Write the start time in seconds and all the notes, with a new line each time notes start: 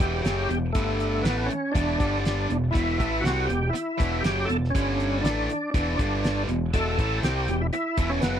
Already playing: G4
0.00 E1 E2 B2 E3, kick, closed hi-hat
0.23 F#1 F#2 C#3 F#3 G4, snare, closed hi-hat
0.49 E1 E2 B2, closed hi-hat
0.73 G1 G2 D3 G3 A3, kick, closed hi-hat
1.00 closed hi-hat
1.22 A1 A2 E3 A3 B3, closed hi-hat
1.26 snare
1.46 C#4, muted picked electric bass stroke
1.50 muted distorted electric guitar stroke, closed hi-hat
1.72 E1 E2 B2 D4, kick, closed hi-hat
1.76 E3
1.99 G1 G2 D3 G3, kick, closed hi-hat
2.21 D4
2.25 snare, closed hi-hat
2.49 E1 E2 B2, closed hi-hat
2.71 E2 B2 E3 E4
2.75 E1, kick, closed hi-hat
2.99 A1 A2 E3 A3, kick, closed hi-hat
3.20 C2 F#4
3.24 C3 G3 C4, snare, closed hi-hat
3.45 E1 G4
3.49 E2 B2, closed hi-hat
3.69 E4
3.74 muted distorted electric guitar stroke, closed hi-hat
3.98 E1 E2 B2 E3, kick, closed hi-hat
4.21 F#1 F#2 C#3 G4, closed hi-hat
4.25 F#3, snare
4.45 E1 E2 A4
4.49 B2, closed hi-hat
4.64 snare
4.70 C#4
4.75 G1 G2 D3 G3, kick, closed hi-hat
5.00 closed hi-hat
5.21 A1 A2 E3 A3 D4, closed hi-hat
5.26 snare
5.49 muted picked electric bass stroke, muted distorted electric guitar stroke, closed hi-hat
5.71 E1 E2 B2 D4, kick, closed hi-hat
5.75 E3
5.99 G1 G2 D3 G3, kick, closed hi-hat
6.24 snare, closed hi-hat
6.47 E1 E2 B2, closed hi-hat
6.73 E1 E2 B2 E3 A4, kick, closed hi-hat
6.99 A1 A2 E3 A3, kick, closed hi-hat
7.23 C2 C3 G3 C4 G4, snare, closed hi-hat
7.47 E1 E2 B2, closed hi-hat
7.61 E4
7.73 E4, muted picked electric bass stroke, muted distorted electric guitar stroke, closed hi-hat
7.97 E1 E2 B2 E3, kick, closed hi-hat
8.10 C#4
8.21 F#1 F#2 C#3 F#3 B3, snare, closed hi-hat